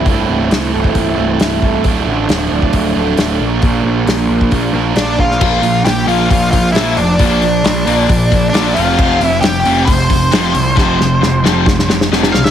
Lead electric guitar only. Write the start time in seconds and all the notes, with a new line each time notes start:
4.97 D4
5.20 F4
5.85 G4
6.08 F4
6.31 F4
6.51 F4
6.72 E4
6.97 D4
8.50 D4
8.73 F4
9.23 E4
9.41 G4
9.85 C5
12.32 F5
12.44 E5